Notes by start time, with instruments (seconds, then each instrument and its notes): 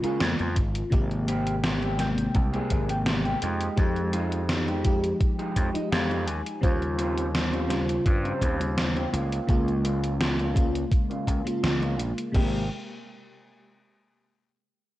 Already playing: fm electric piano G#3 A#3 F4
0.00 fm electric piano C#3 G#3 A#3, clean electric guitar A#3 C#4 F4 G#4, muted slap bass stroke, closed hi-hat
0.04 fm electric piano F4
0.20 slap bass F2, snare, closed hi-hat
0.39 slap bass F2, muted clean electric guitar stroke, closed hi-hat
0.56 slap bass G#1, kick, closed hi-hat
0.75 closed hi-hat
0.90 slap bass G#1, fm electric piano C3 G#3 A#3 G4, kick, closed hi-hat
1.11 closed hi-hat
1.27 clean electric guitar A#3 C4 G4, closed hi-hat
1.47 closed hi-hat
1.64 snare, closed hi-hat
1.81 clean electric guitar A#3 C4 G4, closed hi-hat
1.97 fm electric piano C3 G#3 A#3 G5, snare, closed hi-hat
2.18 closed hi-hat
2.34 slap bass C2, muted clean electric guitar stroke, kick, closed hi-hat
2.53 clean electric guitar A#3 C4 G#4, closed hi-hat
2.70 slap bass G#1, kick, closed hi-hat
2.88 fm electric piano C3 G#3 A#3 G5, closed hi-hat
3.06 snare, closed hi-hat
3.24 clean electric guitar A#3 C4 G4, closed hi-hat
3.41 slap bass F2, clean electric guitar G#3 D#4 G4, closed hi-hat
3.61 closed hi-hat
3.76 slap bass F2, fm electric piano F3 G#3 D#4 G4, kick, closed hi-hat
3.96 closed hi-hat
4.13 clean electric guitar G#3 D#4 F4, closed hi-hat
4.32 closed hi-hat
4.49 snare, closed hi-hat
4.67 clean electric guitar G#3 D#4 G4, closed hi-hat
4.84 fm electric piano F3 G#3 D#4 G4, kick, closed hi-hat
5.04 closed hi-hat
5.20 muted clean electric guitar stroke, kick, closed hi-hat
5.39 clean electric guitar G#3 D#4 G4, closed hi-hat
5.56 slap bass F2, clean electric guitar C#5, kick, closed hi-hat
5.73 fm electric piano F3 G#3 D#4, clean electric guitar D#5, muted slap bass stroke, closed hi-hat
5.92 slap bass F2, clean electric guitar F5, snare, closed hi-hat
6.10 clean electric guitar G#3 D#4 G4, closed hi-hat
6.27 slap bass D#2, clean electric guitar G#5, closed hi-hat
6.46 muted clean electric guitar stroke, closed hi-hat
6.61 slap bass D#2, fm electric piano C#3 G3 F4 C5, kick, closed hi-hat
6.82 closed hi-hat
6.98 clean electric guitar C4 C#4 F4 G4, closed hi-hat
7.18 closed hi-hat
7.35 snare, closed hi-hat
7.52 clean electric guitar C4 C#4 F4 G4, closed hi-hat
7.68 fm electric piano C#3 G3 F4 C5, snare, closed hi-hat
7.89 closed hi-hat
8.06 slap bass G2, muted clean electric guitar stroke, kick, closed hi-hat
8.24 clean electric guitar C4 C#4 F4 G4, closed hi-hat
8.42 slap bass D#2, kick, closed hi-hat
8.59 fm electric piano C#3 G3 F4 C5, closed hi-hat
8.78 snare, closed hi-hat
8.95 clean electric guitar C4 C#4 F4 G4, closed hi-hat
9.12 slap bass C#2, clean electric guitar A#3 C#4 F4, closed hi-hat
9.32 closed hi-hat
9.47 slap bass C#2, fm electric piano C#3 G#3 A#3 F4, kick, closed hi-hat
9.68 closed hi-hat
9.84 clean electric guitar A#3 C#4 F4, closed hi-hat
10.04 closed hi-hat
10.21 snare, closed hi-hat
10.38 clean electric guitar A#3 C#4 F4, closed hi-hat
10.54 fm electric piano C#3 G#3 A#3 F4, kick, closed hi-hat
10.75 closed hi-hat
10.92 muted clean electric guitar stroke, kick, closed hi-hat
11.10 clean electric guitar A#3 C#4 F4, closed hi-hat
11.27 slap bass C#2, kick, closed hi-hat
11.44 fm electric piano C#3 G#3 A#3 F4, muted slap bass stroke, closed hi-hat
11.63 slap bass C#2, snare, closed hi-hat
11.82 clean electric guitar A#3 C#4 F4, closed hi-hat
11.98 slap bass A#1, closed hi-hat
12.18 muted clean electric guitar stroke, closed hi-hat
12.32 slap bass G#1, fm electric piano C3 G#3 A#3, clean electric guitar A#3 C4 G4, kick, crash
12.36 fm electric piano G4